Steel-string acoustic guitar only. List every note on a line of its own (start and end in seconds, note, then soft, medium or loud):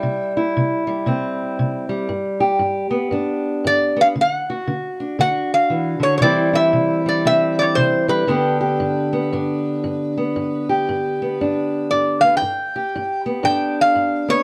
0.00 0.51 C3 medium
0.00 0.87 G3 medium
0.00 0.36 E4 medium
0.37 2.11 E4 medium
0.57 1.04 C3 medium
0.87 1.88 G3 medium
1.06 1.54 C3 medium
1.06 2.08 C4 medium
1.59 2.06 C3 medium
1.89 2.90 G3 medium
2.09 2.57 G2 medium
2.40 4.14 G4 medium
2.59 3.08 G2 medium
2.91 3.95 B3 medium
3.11 3.60 G2 medium
3.11 4.14 D4 medium
3.64 4.12 G2 medium
3.96 4.14 B3 medium
4.16 4.64 D3 medium
4.50 5.19 F#4 medium
4.67 5.15 D3 medium
5.00 6.21 D4 soft
5.19 5.67 D3 medium
5.19 6.21 F#4 medium
5.70 5.99 E3 medium
6.00 6.21 D3 medium
6.20 6.69 C3 medium
6.20 8.26 E3 medium
6.20 7.05 G3 medium
6.20 7.24 C4 medium
6.20 6.52 E4 medium
6.53 8.29 E4 medium
6.73 7.21 C3 medium
7.06 8.08 G3 soft
7.25 7.73 C3 medium
7.25 8.26 C4 medium
7.77 8.25 C3 medium
8.08 8.28 G3 medium
8.27 8.76 G2 medium
8.27 12.42 D3 medium
8.27 9.12 B3 medium
8.27 9.33 D4 medium
8.27 8.60 G4 medium
8.61 10.69 G4 medium
8.80 9.28 G2 medium
9.13 10.17 B3 medium
9.33 9.80 G2 medium
9.33 11.41 D4 medium
9.84 10.31 G2 medium
10.17 11.22 B3 medium
10.36 10.83 G2 medium
10.69 12.41 G4 medium
10.89 11.36 G2 medium
11.22 12.22 B3 soft
11.41 11.88 G2 medium
11.41 12.41 D4 medium
11.92 12.39 G2 medium
12.23 12.40 B3 medium
12.42 12.90 G2 medium
12.76 14.43 G4 medium
12.95 13.42 G2 medium
13.26 14.28 B3 medium
13.43 13.92 G2 medium
13.43 14.43 D4 medium
13.95 14.43 G2 medium
14.28 14.43 B3 medium